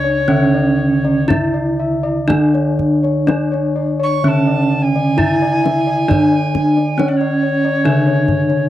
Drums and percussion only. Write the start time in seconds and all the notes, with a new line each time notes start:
0.05 kendang slap
1.04 kendang slap
1.30 kendang high, kendang low
2.30 kendang low
2.55 kendang slap
2.79 kendang low
3.04 kendang slap
3.28 kendang high
3.54 kendang slap
4.96 kendang slap
5.19 kendang low
5.66 kendang high
6.11 kendang low
6.34 kendang slap
6.55 kendang high, kendang low
6.77 kendang slap
7.00 kendang high
7.21 kendang slap
7.64 kendang slap
8.07 kendang slap
8.28 kendang low
8.50 kendang slap